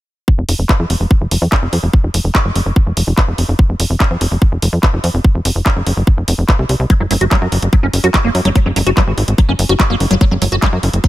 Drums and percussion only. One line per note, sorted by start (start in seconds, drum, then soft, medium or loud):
0.28 kick loud
0.49 open hi-hat loud
0.69 kick loud
0.69 clap loud
0.90 open hi-hat medium
1.11 kick loud
1.31 open hi-hat loud
1.52 kick loud
1.52 clap loud
1.73 open hi-hat medium
1.93 kick loud
2.14 open hi-hat loud
2.35 kick loud
2.35 clap loud
2.56 open hi-hat loud
2.76 kick loud
2.97 open hi-hat loud
3.18 kick loud
3.18 clap loud
3.38 open hi-hat medium
3.59 kick loud
3.80 open hi-hat loud
4.00 kick loud
4.00 clap loud
4.21 open hi-hat loud
4.42 kick loud
4.62 open hi-hat loud
4.83 kick loud
4.83 clap loud
5.04 open hi-hat medium
5.24 kick loud
5.45 open hi-hat loud
5.66 kick loud
5.66 clap loud
5.87 open hi-hat medium
6.07 kick loud
6.28 open hi-hat loud
6.49 kick loud
6.49 clap loud
6.69 open hi-hat medium
6.90 kick loud
6.90 closed hi-hat medium
7.11 open hi-hat loud
7.21 closed hi-hat medium
7.31 kick loud
7.31 clap loud
7.31 closed hi-hat medium
7.52 open hi-hat medium
7.62 closed hi-hat medium
7.73 kick loud
7.73 closed hi-hat medium
7.93 open hi-hat loud
8.04 closed hi-hat medium
8.14 kick loud
8.14 clap loud
8.14 closed hi-hat medium
8.35 open hi-hat medium
8.45 closed hi-hat medium
8.55 kick loud
8.55 closed hi-hat medium
8.76 open hi-hat loud
8.87 closed hi-hat medium
8.97 kick loud
8.97 clap loud
8.97 closed hi-hat medium
9.18 open hi-hat medium
9.28 closed hi-hat medium
9.38 kick loud
9.38 closed hi-hat medium
9.59 open hi-hat loud
9.69 closed hi-hat medium
9.80 kick loud
9.80 clap loud
9.80 closed hi-hat medium
10.00 open hi-hat medium
10.11 closed hi-hat medium
10.21 kick loud
10.21 closed hi-hat medium
10.42 open hi-hat loud
10.52 closed hi-hat medium
10.62 kick loud
10.62 clap loud
10.62 closed hi-hat medium
10.83 open hi-hat medium
10.93 closed hi-hat medium
11.04 kick loud
11.04 closed hi-hat medium